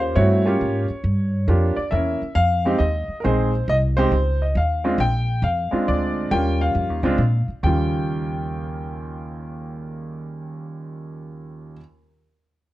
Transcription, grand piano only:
0.00 0.14 A#3 medium
0.00 0.14 C#4 medium
0.00 0.15 F4 medium
0.00 0.15 G4 medium
0.00 0.14 C5 medium
0.15 0.42 A3 medium
0.15 0.42 C4 medium
0.15 0.42 E4 medium
0.15 0.42 F#4 medium
0.15 1.73 C#5 medium
0.45 0.83 A#3 medium
0.45 0.84 C#4 medium
0.45 0.84 F4 medium
0.45 0.84 G4 medium
1.48 1.74 A#3 medium
1.48 1.74 D4 medium
1.48 1.75 F4 medium
1.48 1.75 G4 medium
1.76 1.91 D5 medium
1.91 2.18 A#3 medium
1.91 2.18 C#4 medium
1.91 2.19 E4 soft
1.91 2.19 A#4 medium
1.91 2.32 E5 medium
2.35 2.77 F5 loud
2.65 2.79 G#3 medium
2.65 2.79 C4 medium
2.65 2.80 D#4 medium
2.65 2.80 G4 medium
2.78 3.16 D#5 medium
3.20 3.50 G#3 medium
3.20 3.25 A#4 medium
3.24 3.50 C4 medium
3.24 3.51 D#4 medium
3.24 3.51 G#4 medium
3.24 3.66 C5 medium
3.69 3.76 D#5 loud
3.97 4.11 G#3 medium
3.97 4.11 C4 medium
3.97 4.12 D#4 medium
3.97 4.12 G4 medium
3.97 4.42 C5 loud
4.42 4.57 D#5 medium
4.57 4.98 F5 medium
4.84 4.98 G#3 medium
4.84 4.99 C4 medium
4.84 4.99 D4 medium
4.84 4.99 F4 medium
5.00 5.46 G5 loud
5.44 5.85 F5 medium
5.71 6.28 G#3 medium
5.71 6.29 C4 medium
5.71 6.29 D4 medium
5.71 6.29 F4 medium
5.88 6.29 D5 medium
6.31 6.99 G3 medium
6.31 6.99 A#3 medium
6.31 6.99 C#4 medium
6.31 7.00 F4 medium
6.31 6.61 G5 loud
6.62 7.45 F5 medium
7.04 7.18 G#3 medium
7.04 7.18 C4 medium
7.04 7.19 D4 medium
7.04 7.19 F4 medium
7.63 11.76 D#2 medium
7.63 11.77 C#3 medium
7.63 11.77 G3 medium
7.63 11.78 F4 medium
7.63 11.73 G5 medium

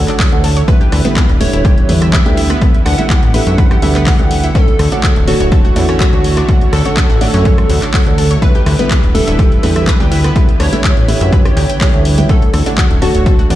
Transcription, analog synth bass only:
0.32 0.64 D2 medium
0.92 1.02 D2 loud
1.29 1.47 D1 loud
1.53 1.85 D1 medium
1.89 2.21 E2 medium
2.26 2.57 D2 medium
2.86 2.95 D2 medium
3.23 3.41 A1 loud
3.47 3.78 F#2 medium
3.82 4.14 D2 medium
4.19 4.51 D2 medium
4.79 4.89 D2 loud
5.16 5.34 D1 loud
5.40 5.72 D1 medium
5.76 6.08 E2 medium
6.13 6.44 D2 medium
6.73 6.82 D2 loud
7.10 7.28 A1 medium
7.34 7.65 F#2 medium
7.69 7.79 D2 loud
8.06 8.38 D2 medium
8.66 8.76 D2 loud
9.03 9.21 D1 loud
9.27 9.59 D1 medium
9.63 9.95 E2 medium
10.00 10.31 D2 medium
10.60 10.70 D2 loud
10.97 11.15 A1 medium
11.21 11.52 F#2 medium
11.57 11.66 D2 loud
11.94 12.25 D2 medium
12.54 12.63 D2 loud
12.90 13.09 D1 loud
13.15 13.46 D1 medium
13.50 13.55 E2 medium

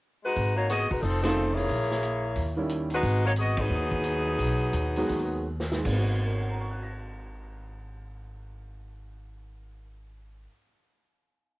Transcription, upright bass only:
0.36 0.87 G#1 medium
0.90 1.02 E1 medium
1.02 1.66 F1 medium
1.69 2.33 A#1 medium
2.36 3.00 D#2 medium
3.03 3.67 G#1 medium
3.70 4.35 D#2 medium
4.39 4.72 B1 medium
4.73 5.07 D#2 medium
5.10 5.82 D#2 medium
5.85 10.45 G#1 medium

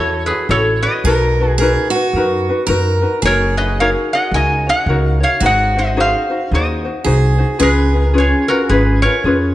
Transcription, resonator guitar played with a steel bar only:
0.00 0.25 A4 medium
0.00 0.26 C#5 medium
0.26 0.47 G#4 medium
0.26 0.49 B4 medium
0.51 0.81 A4 medium
0.51 0.82 C#5 medium
0.82 2.42 B4 medium
0.82 2.43 D#5 medium
3.25 3.56 A#4 medium
3.25 3.57 C#5 medium
3.57 3.77 B4 medium
3.57 3.79 D#5 medium
3.80 3.89 C#5 medium
3.80 3.89 F5 medium
4.13 4.33 D#5 medium
4.13 4.34 F#5 medium
4.34 4.65 D#5 medium
4.34 4.67 G#5 medium
4.69 5.18 D#5 medium
4.69 5.09 F#5 loud
5.09 5.23 F5 loud
5.23 5.42 C#5 medium
5.23 5.44 F5 medium
5.46 5.75 D#5 medium
5.46 5.78 F#5 medium
5.79 5.97 C5 medium
5.79 5.99 D#5 medium
6.00 6.49 C5 medium
6.00 6.49 F5 medium
6.55 7.37 C5 medium
6.55 7.37 D#5 medium
7.62 8.12 G#4 medium
7.62 8.03 B4 medium
8.03 8.18 A#4 medium
8.18 8.48 G#4 medium
8.18 8.51 C#5 medium
8.48 8.69 F#4 medium
8.48 8.69 A#4 medium
8.69 9.00 G#4 medium
8.69 9.02 B4 medium
9.02 9.54 A#4 medium
9.02 9.55 C#5 medium

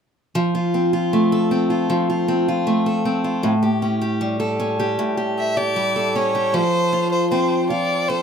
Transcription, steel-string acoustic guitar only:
0.35 1.88 F3 medium
0.55 0.92 F4 soft
0.74 1.50 C4 soft
0.93 1.69 F4 soft
1.13 2.66 A3 medium
1.32 2.86 A4 medium
1.51 2.27 C4 soft
1.70 2.08 F4 soft
1.90 3.52 F3 medium
2.10 2.47 F4 soft
2.28 3.04 C4 soft
2.48 3.23 F4 soft
2.67 3.66 A3 soft
2.86 3.66 A4 soft
3.05 3.52 C4 soft
3.24 3.52 F4 soft
3.43 4.98 A2 medium
3.63 4.00 G4 soft
3.82 4.58 C#4 soft
4.01 4.78 G4 soft
4.21 5.75 G3 medium
4.40 5.96 A4 medium
4.60 5.38 C#4 soft
4.80 5.16 G4 soft
4.99 6.62 A2 medium
5.17 5.56 G4 soft
5.57 6.34 G4 soft
5.76 6.62 G3 medium
5.96 8.09 A4 medium
6.16 6.62 C#4 soft
6.35 6.62 G4 soft
6.54 8.22 F3 medium
6.93 7.69 F4 soft
7.32 8.22 C4 medium
7.70 8.22 F4 soft
8.10 8.22 A4 medium

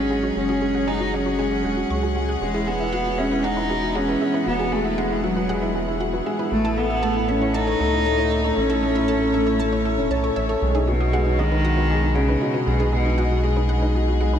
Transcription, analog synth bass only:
0.00 0.31 G#1 medium
0.36 1.64 F#1 loud
1.64 1.84 E1 medium
1.90 2.37 C#2 medium
2.41 4.16 E1 loud
4.46 6.21 E1 loud
6.51 7.75 A1 loud
7.80 8.52 C#2 medium
8.57 9.99 A1 loud
9.98 10.10 E1 medium
10.10 10.30 B1 medium
10.36 10.56 A1 medium
10.62 12.37 B1 loud
12.67 14.39 B1 loud

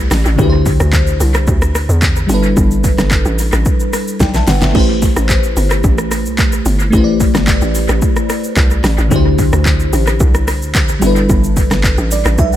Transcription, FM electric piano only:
0.00 0.33 A3 medium
0.00 0.34 E4 medium
0.00 0.35 G4 medium
0.00 0.36 B4 medium
0.00 0.37 D5 medium
0.36 2.24 D3 medium
0.36 2.25 D4 medium
0.36 2.26 E4 medium
0.41 2.27 G4 medium
0.41 0.48 B4 medium
0.49 2.31 C5 medium
2.27 4.42 G3 medium
2.27 4.43 D4 medium
2.27 4.44 E4 medium
2.32 4.45 A4 medium
2.32 4.19 B4 medium
4.21 4.35 D5 medium
4.21 4.34 G5 medium
4.35 4.48 E5 medium
4.35 4.47 A5 medium
4.49 4.62 B4 medium
4.49 4.62 F#5 medium
4.63 4.76 B4 medium
4.63 4.88 E5 medium
4.72 6.88 A3 medium
4.72 6.89 E4 medium
4.72 6.90 G4 medium
4.78 6.90 B4 medium
4.78 6.91 C5 medium
6.90 9.06 A3 medium
6.90 9.07 E4 medium
6.90 9.08 G4 medium
6.96 9.09 B4 medium
6.96 7.02 C5 medium
7.04 9.13 D5 medium
9.09 10.97 D3 medium
9.09 10.98 D4 medium
9.09 10.99 E4 medium
9.14 11.00 G4 medium
9.14 11.01 C5 medium
10.99 12.56 G3 medium
10.99 12.56 D4 medium
10.99 12.56 E4 medium
11.05 12.56 A4 medium
11.05 12.56 B4 medium
12.12 12.37 D5 medium
12.39 12.52 E5 medium

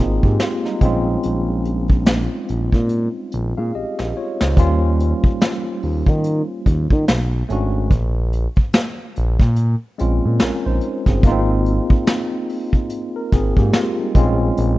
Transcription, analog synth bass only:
0.00 0.20 G#1 medium
0.24 0.38 G#2 medium
0.82 1.17 A#1 loud
1.25 2.28 A#1 loud
2.50 2.70 A#1 medium
2.73 3.08 A#2 medium
3.34 3.54 A#1 loud
3.58 3.72 A#2 medium
3.75 3.85 A#1 soft
4.00 4.13 A#1 medium
4.41 4.55 C#2 medium
4.58 5.13 D#2 loud
5.25 5.31 D#2 soft
5.84 6.04 D#2 medium
6.07 6.42 D#3 medium
6.67 6.87 D#2 medium
6.92 7.05 D#3 medium
7.09 7.43 B1 loud
7.50 7.93 G#1 medium
7.92 8.47 A#1 loud
8.58 8.64 A#1 soft
9.18 9.37 A#1 loud
9.40 9.75 A#2 medium
10.01 10.21 A#1 medium
10.25 10.39 A#2 medium
10.42 10.51 A#1 soft
10.66 10.80 A#1 medium
11.07 11.21 G1 medium
11.24 11.80 G#1 loud
11.91 11.98 G#1 soft
13.33 13.54 G#1 medium
13.58 13.72 G#2 loud
14.16 14.51 A#1 loud
14.59 14.79 A#1 loud

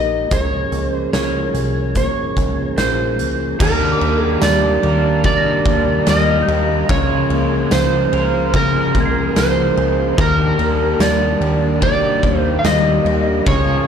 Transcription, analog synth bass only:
0.00 0.26 A#1 medium
0.31 0.68 C#2 medium
0.72 1.09 C#2 medium
1.13 1.50 C#2 medium
1.54 2.09 C2 medium
2.37 2.73 C#2 medium
2.77 3.20 A#1 medium
3.19 3.55 C#2 medium
3.60 3.96 D#2 loud
4.01 4.38 D#2 medium
4.42 4.79 D#2 loud
4.84 5.38 D#2 loud
5.65 6.02 D#2 medium
6.07 6.43 D#2 loud
6.48 6.84 D#2 loud
6.89 7.25 C#2 loud
7.30 7.66 C#2 medium
7.72 8.08 C#2 loud
8.13 8.67 C#2 loud
8.95 9.31 C#2 loud
9.36 9.72 C#2 medium
9.77 10.13 C#2 loud
10.18 10.54 D#2 medium
10.58 10.95 D#2 medium
11.00 11.36 D#2 loud
11.40 11.95 D#2 loud
12.23 12.59 D#2 loud
12.64 13.00 D#2 loud
13.05 13.41 D#2 loud
13.46 13.83 C#2 loud

